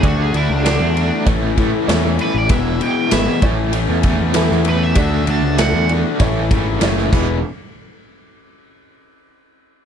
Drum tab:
CC |----------------|----------------|--------------x-|----------------|
RD |x-x-x-x-x-x-x-x-|x-x-x-x-x-x-x-x-|x-x-x-x-x-x-x---|----------------|
SD |----o-------o---|----o-------oo--|----o-------oo--|----------------|
BD |o-------o-o-----|o-----o---o-----|o-------o-o---o-|----------------|